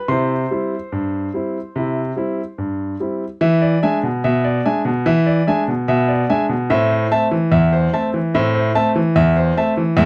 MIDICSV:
0, 0, Header, 1, 2, 480
1, 0, Start_track
1, 0, Tempo, 832178
1, 49, Time_signature, 2, 2, 24, 8
1, 1969, Tempo, 820793
1, 5852, End_track
2, 0, Start_track
2, 0, Title_t, "Grand piano"
2, 0, Program_c, 0, 0
2, 48, Note_on_c, 0, 48, 82
2, 48, Note_on_c, 0, 84, 75
2, 54, Note_on_c, 0, 72, 64
2, 60, Note_on_c, 0, 64, 44
2, 190, Note_off_c, 0, 64, 0
2, 253, Note_off_c, 0, 48, 0
2, 294, Note_on_c, 0, 55, 48
2, 296, Note_on_c, 0, 60, 42
2, 299, Note_on_c, 0, 64, 49
2, 425, Note_off_c, 0, 55, 0
2, 427, Note_off_c, 0, 60, 0
2, 429, Note_off_c, 0, 64, 0
2, 532, Note_on_c, 0, 43, 63
2, 735, Note_off_c, 0, 43, 0
2, 772, Note_on_c, 0, 55, 40
2, 776, Note_on_c, 0, 60, 40
2, 778, Note_on_c, 0, 64, 41
2, 903, Note_off_c, 0, 55, 0
2, 906, Note_off_c, 0, 60, 0
2, 907, Note_off_c, 0, 64, 0
2, 1013, Note_on_c, 0, 48, 76
2, 1025, Note_on_c, 0, 64, 45
2, 1152, Note_off_c, 0, 64, 0
2, 1215, Note_off_c, 0, 48, 0
2, 1248, Note_on_c, 0, 55, 46
2, 1252, Note_on_c, 0, 60, 47
2, 1255, Note_on_c, 0, 64, 51
2, 1380, Note_off_c, 0, 55, 0
2, 1383, Note_off_c, 0, 60, 0
2, 1385, Note_off_c, 0, 64, 0
2, 1489, Note_on_c, 0, 43, 55
2, 1693, Note_off_c, 0, 43, 0
2, 1705, Note_off_c, 0, 84, 0
2, 1708, Note_off_c, 0, 72, 0
2, 1732, Note_on_c, 0, 55, 44
2, 1734, Note_on_c, 0, 60, 37
2, 1735, Note_on_c, 0, 64, 38
2, 1862, Note_off_c, 0, 55, 0
2, 1864, Note_off_c, 0, 60, 0
2, 1865, Note_off_c, 0, 64, 0
2, 1967, Note_on_c, 0, 52, 105
2, 1967, Note_on_c, 0, 76, 77
2, 2088, Note_on_c, 0, 74, 69
2, 2094, Note_off_c, 0, 76, 0
2, 2172, Note_off_c, 0, 52, 0
2, 2210, Note_on_c, 0, 56, 55
2, 2210, Note_on_c, 0, 76, 75
2, 2213, Note_on_c, 0, 62, 61
2, 2213, Note_on_c, 0, 80, 80
2, 2215, Note_off_c, 0, 74, 0
2, 2297, Note_off_c, 0, 76, 0
2, 2298, Note_off_c, 0, 80, 0
2, 2331, Note_on_c, 0, 47, 65
2, 2343, Note_off_c, 0, 56, 0
2, 2344, Note_off_c, 0, 62, 0
2, 2445, Note_off_c, 0, 47, 0
2, 2453, Note_on_c, 0, 76, 83
2, 2454, Note_on_c, 0, 47, 90
2, 2572, Note_on_c, 0, 74, 68
2, 2578, Note_off_c, 0, 76, 0
2, 2656, Note_off_c, 0, 47, 0
2, 2694, Note_on_c, 0, 56, 50
2, 2694, Note_on_c, 0, 76, 65
2, 2696, Note_on_c, 0, 62, 59
2, 2696, Note_on_c, 0, 80, 76
2, 2697, Note_off_c, 0, 74, 0
2, 2779, Note_off_c, 0, 76, 0
2, 2780, Note_off_c, 0, 80, 0
2, 2808, Note_on_c, 0, 47, 75
2, 2825, Note_off_c, 0, 56, 0
2, 2826, Note_off_c, 0, 62, 0
2, 2931, Note_on_c, 0, 52, 104
2, 2932, Note_on_c, 0, 76, 85
2, 2935, Note_off_c, 0, 47, 0
2, 3051, Note_on_c, 0, 74, 72
2, 3057, Note_off_c, 0, 76, 0
2, 3135, Note_off_c, 0, 52, 0
2, 3173, Note_on_c, 0, 76, 72
2, 3174, Note_on_c, 0, 56, 55
2, 3177, Note_off_c, 0, 74, 0
2, 3177, Note_on_c, 0, 62, 63
2, 3177, Note_on_c, 0, 80, 80
2, 3258, Note_off_c, 0, 76, 0
2, 3261, Note_off_c, 0, 80, 0
2, 3293, Note_on_c, 0, 47, 68
2, 3305, Note_off_c, 0, 56, 0
2, 3307, Note_off_c, 0, 62, 0
2, 3403, Note_off_c, 0, 47, 0
2, 3412, Note_on_c, 0, 47, 87
2, 3413, Note_on_c, 0, 76, 86
2, 3530, Note_on_c, 0, 74, 64
2, 3538, Note_off_c, 0, 76, 0
2, 3615, Note_off_c, 0, 47, 0
2, 3652, Note_on_c, 0, 56, 55
2, 3654, Note_on_c, 0, 76, 76
2, 3655, Note_on_c, 0, 62, 63
2, 3655, Note_on_c, 0, 80, 82
2, 3656, Note_off_c, 0, 74, 0
2, 3739, Note_off_c, 0, 76, 0
2, 3740, Note_off_c, 0, 80, 0
2, 3769, Note_on_c, 0, 47, 65
2, 3784, Note_off_c, 0, 56, 0
2, 3786, Note_off_c, 0, 62, 0
2, 3890, Note_off_c, 0, 47, 0
2, 3890, Note_on_c, 0, 76, 89
2, 3891, Note_on_c, 0, 45, 102
2, 3903, Note_on_c, 0, 60, 66
2, 4010, Note_on_c, 0, 72, 66
2, 4017, Note_off_c, 0, 76, 0
2, 4032, Note_off_c, 0, 60, 0
2, 4095, Note_off_c, 0, 45, 0
2, 4132, Note_on_c, 0, 57, 55
2, 4133, Note_on_c, 0, 76, 80
2, 4135, Note_on_c, 0, 60, 63
2, 4135, Note_on_c, 0, 81, 92
2, 4136, Note_off_c, 0, 72, 0
2, 4219, Note_off_c, 0, 76, 0
2, 4220, Note_off_c, 0, 81, 0
2, 4250, Note_on_c, 0, 52, 80
2, 4264, Note_off_c, 0, 57, 0
2, 4266, Note_off_c, 0, 60, 0
2, 4368, Note_on_c, 0, 40, 93
2, 4369, Note_on_c, 0, 76, 85
2, 4377, Note_off_c, 0, 52, 0
2, 4491, Note_on_c, 0, 72, 76
2, 4496, Note_off_c, 0, 76, 0
2, 4573, Note_off_c, 0, 40, 0
2, 4611, Note_on_c, 0, 57, 53
2, 4612, Note_on_c, 0, 76, 65
2, 4614, Note_on_c, 0, 81, 79
2, 4615, Note_on_c, 0, 60, 64
2, 4617, Note_off_c, 0, 72, 0
2, 4698, Note_off_c, 0, 76, 0
2, 4699, Note_off_c, 0, 81, 0
2, 4732, Note_on_c, 0, 52, 69
2, 4743, Note_off_c, 0, 57, 0
2, 4746, Note_off_c, 0, 60, 0
2, 4852, Note_on_c, 0, 76, 82
2, 4854, Note_on_c, 0, 45, 103
2, 4857, Note_off_c, 0, 52, 0
2, 4864, Note_on_c, 0, 60, 68
2, 4971, Note_on_c, 0, 72, 68
2, 4977, Note_off_c, 0, 76, 0
2, 4992, Note_off_c, 0, 60, 0
2, 5056, Note_off_c, 0, 45, 0
2, 5090, Note_on_c, 0, 57, 64
2, 5091, Note_on_c, 0, 76, 77
2, 5092, Note_on_c, 0, 81, 93
2, 5093, Note_on_c, 0, 60, 68
2, 5096, Note_off_c, 0, 72, 0
2, 5177, Note_off_c, 0, 76, 0
2, 5177, Note_off_c, 0, 81, 0
2, 5210, Note_on_c, 0, 52, 84
2, 5222, Note_off_c, 0, 57, 0
2, 5223, Note_off_c, 0, 60, 0
2, 5328, Note_on_c, 0, 76, 93
2, 5329, Note_on_c, 0, 40, 102
2, 5335, Note_off_c, 0, 52, 0
2, 5449, Note_on_c, 0, 72, 75
2, 5454, Note_off_c, 0, 76, 0
2, 5532, Note_off_c, 0, 40, 0
2, 5570, Note_on_c, 0, 57, 66
2, 5571, Note_on_c, 0, 76, 79
2, 5572, Note_on_c, 0, 81, 83
2, 5573, Note_on_c, 0, 60, 60
2, 5574, Note_off_c, 0, 72, 0
2, 5656, Note_off_c, 0, 76, 0
2, 5657, Note_off_c, 0, 81, 0
2, 5688, Note_on_c, 0, 52, 76
2, 5701, Note_off_c, 0, 57, 0
2, 5703, Note_off_c, 0, 60, 0
2, 5801, Note_on_c, 0, 40, 110
2, 5803, Note_on_c, 0, 76, 99
2, 5807, Note_off_c, 0, 52, 0
2, 5812, Note_on_c, 0, 56, 79
2, 5852, Note_off_c, 0, 40, 0
2, 5852, Note_off_c, 0, 56, 0
2, 5852, Note_off_c, 0, 76, 0
2, 5852, End_track
0, 0, End_of_file